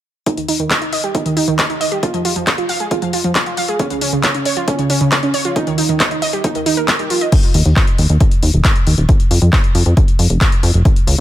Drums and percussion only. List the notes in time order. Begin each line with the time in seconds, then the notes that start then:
0.26 kick, closed hi-hat
0.37 closed hi-hat
0.48 open hi-hat
0.59 closed hi-hat
0.71 kick, clap, closed hi-hat
0.82 closed hi-hat
0.93 open hi-hat
1.04 closed hi-hat
1.15 kick, closed hi-hat
1.26 closed hi-hat
1.37 open hi-hat
1.48 closed hi-hat
1.59 kick, clap, closed hi-hat
1.70 closed hi-hat
1.81 open hi-hat
1.92 closed hi-hat
2.03 kick, closed hi-hat
2.14 closed hi-hat
2.25 open hi-hat
2.36 closed hi-hat
2.47 kick, clap, closed hi-hat
2.58 closed hi-hat
2.69 open hi-hat
2.80 closed hi-hat
2.91 kick, closed hi-hat
3.02 closed hi-hat
3.13 open hi-hat
3.24 closed hi-hat
3.35 kick, clap, closed hi-hat
3.46 closed hi-hat
3.57 open hi-hat
3.68 closed hi-hat
3.79 kick, closed hi-hat
3.90 closed hi-hat
4.01 open hi-hat
4.23 kick, clap, closed hi-hat
4.34 closed hi-hat
4.45 open hi-hat
4.57 closed hi-hat
4.68 kick, closed hi-hat
4.79 closed hi-hat
4.90 open hi-hat
5.01 closed hi-hat
5.12 kick, clap, closed hi-hat
5.23 closed hi-hat
5.34 open hi-hat
5.45 closed hi-hat
5.56 kick, closed hi-hat
5.67 closed hi-hat
5.78 open hi-hat
5.89 closed hi-hat
6.00 kick, clap, closed hi-hat
6.11 closed hi-hat
6.22 open hi-hat
6.33 closed hi-hat
6.44 kick, closed hi-hat
6.55 closed hi-hat
6.66 open hi-hat
6.77 closed hi-hat
6.88 kick, clap, closed hi-hat
6.99 closed hi-hat
7.10 open hi-hat
7.21 closed hi-hat
7.32 kick, closed hi-hat, crash
7.43 closed hi-hat
7.54 open hi-hat
7.65 closed hi-hat
7.76 kick, clap
7.87 closed hi-hat
7.98 open hi-hat
8.09 closed hi-hat
8.20 kick, closed hi-hat
8.31 closed hi-hat
8.43 open hi-hat
8.54 closed hi-hat
8.65 kick, clap, closed hi-hat
8.76 closed hi-hat
8.87 open hi-hat
8.98 closed hi-hat
9.09 kick, closed hi-hat
9.20 closed hi-hat
9.31 open hi-hat
9.42 closed hi-hat
9.53 kick, clap
9.64 closed hi-hat
9.75 open hi-hat
9.86 closed hi-hat
9.97 kick, closed hi-hat
10.08 closed hi-hat
10.19 open hi-hat
10.30 closed hi-hat
10.41 kick, clap, closed hi-hat
10.52 closed hi-hat
10.63 open hi-hat
10.74 closed hi-hat
10.85 kick, closed hi-hat
10.96 closed hi-hat
11.07 open hi-hat